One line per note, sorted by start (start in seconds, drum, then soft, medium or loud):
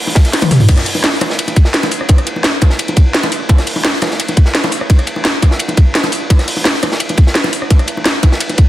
0.07 high bongo medium
0.15 kick loud
0.15 snare loud
0.15 closed hi-hat medium
0.15 ride medium
0.25 snare soft
0.25 closed hi-hat soft
0.33 snare medium
0.33 closed hi-hat medium
0.33 open hi-hat medium
0.42 closed hi-hat soft
0.42 high tom medium
0.42 ride medium
0.42 high bongo medium
0.51 snare soft
0.51 open hi-hat medium
0.51 mid tom medium
0.60 mid tom medium
0.60 open hi-hat medium
0.69 kick loud
0.69 closed hi-hat loud
0.69 crash loud
0.69 ride medium
0.69 high bongo medium
0.78 cross-stick soft
0.78 snare soft
0.78 closed hi-hat soft
0.86 closed hi-hat medium
0.86 open hi-hat medium
0.95 high bongo medium
1.04 snare loud
1.04 closed hi-hat loud
1.04 ride medium
1.13 snare soft
1.21 cross-stick medium
1.21 closed hi-hat medium
1.21 ride medium
1.21 high bongo loud
1.30 snare medium
1.39 closed hi-hat loud
1.39 ride medium
1.48 closed hi-hat soft
1.48 high bongo medium
1.56 kick loud
1.56 closed hi-hat medium
1.56 ride medium
1.65 snare medium
1.74 snare loud
1.74 closed hi-hat loud
1.74 ride medium
1.83 snare medium
1.83 closed hi-hat soft
1.83 high bongo loud
1.91 open hi-hat medium
1.91 ride medium
2.01 cross-stick soft
2.09 kick loud
2.09 closed hi-hat medium
2.09 ride medium
2.09 high bongo loud
2.18 cross-stick soft
2.18 closed hi-hat soft
2.27 closed hi-hat medium
2.27 ride medium
2.36 high bongo medium
2.44 snare loud
2.44 closed hi-hat medium
2.44 ride medium
2.61 kick medium
2.61 closed hi-hat medium
2.61 ride medium
2.61 high bongo loud
2.70 snare medium
2.79 closed hi-hat loud
2.79 ride medium
2.88 closed hi-hat soft
2.88 high bongo medium
2.97 kick loud
2.97 closed hi-hat medium
2.97 ride medium
3.14 snare loud
3.14 closed hi-hat loud
3.14 ride medium
3.23 snare soft
3.23 closed hi-hat soft
3.23 high bongo loud
3.32 open hi-hat medium
3.32 ride medium
3.49 kick loud
3.49 closed hi-hat medium
3.49 ride medium
3.49 high bongo loud
3.58 cross-stick soft
3.58 snare soft
3.58 closed hi-hat soft
3.67 closed hi-hat medium
3.67 open hi-hat medium
3.76 high bongo medium
3.84 snare loud
3.84 closed hi-hat medium
3.84 ride medium
3.93 snare soft
4.02 cross-stick medium
4.02 snare loud
4.02 closed hi-hat medium
4.02 ride medium
4.02 high bongo loud
4.11 snare medium
4.20 closed hi-hat medium
4.20 ride loud
4.28 closed hi-hat soft
4.28 high bongo medium
4.37 kick loud
4.37 closed hi-hat medium
4.37 ride medium
4.46 snare soft
4.55 snare loud
4.55 closed hi-hat medium
4.55 ride medium
4.64 snare soft
4.64 closed hi-hat soft
4.64 high bongo loud
4.72 open hi-hat medium
4.72 ride medium
4.81 cross-stick soft
4.90 kick loud
4.90 closed hi-hat medium
4.90 ride medium
4.90 high bongo medium
4.99 cross-stick soft
4.99 closed hi-hat soft
5.07 closed hi-hat medium
5.07 ride medium
5.16 high bongo medium
5.25 snare loud
5.25 closed hi-hat medium
5.25 ride medium
5.42 kick medium
5.42 closed hi-hat medium
5.42 ride medium
5.42 high bongo medium
5.51 snare medium
5.59 closed hi-hat medium
5.59 ride medium
5.68 closed hi-hat soft
5.68 high bongo medium
5.77 kick loud
5.77 closed hi-hat medium
5.77 ride medium
5.95 snare loud
5.95 closed hi-hat medium
5.95 ride medium
6.04 snare soft
6.04 closed hi-hat soft
6.04 high bongo loud
6.12 open hi-hat medium
6.12 ride medium
6.30 kick loud
6.30 closed hi-hat medium
6.30 ride medium
6.30 high bongo medium
6.39 cross-stick soft
6.39 snare medium
6.39 closed hi-hat soft
6.48 closed hi-hat medium
6.48 open hi-hat medium
6.57 high bongo medium
6.65 snare loud
6.65 closed hi-hat medium
6.65 ride medium
6.74 snare soft
6.83 cross-stick medium
6.83 closed hi-hat medium
6.83 ride medium
6.83 high bongo medium
6.92 snare medium
7.00 closed hi-hat medium
7.00 ride medium
7.09 closed hi-hat soft
7.09 high bongo medium
7.17 kick loud
7.17 closed hi-hat medium
7.17 ride medium
7.27 snare medium
7.35 snare loud
7.35 closed hi-hat medium
7.35 ride medium
7.44 snare medium
7.44 closed hi-hat soft
7.44 high bongo loud
7.53 open hi-hat medium
7.53 ride medium
7.62 cross-stick soft
7.71 kick loud
7.71 closed hi-hat medium
7.71 ride medium
7.71 high bongo medium
7.79 cross-stick soft
7.79 closed hi-hat soft
7.88 closed hi-hat medium
7.88 ride medium
7.97 high bongo medium
8.05 snare loud
8.05 closed hi-hat loud
8.05 ride loud
8.23 kick medium
8.23 closed hi-hat medium
8.23 ride medium
8.23 high bongo medium
8.32 snare medium
8.40 closed hi-hat loud
8.40 ride loud
8.49 closed hi-hat soft
8.49 high bongo medium
8.58 kick loud
8.58 closed hi-hat medium
8.58 ride medium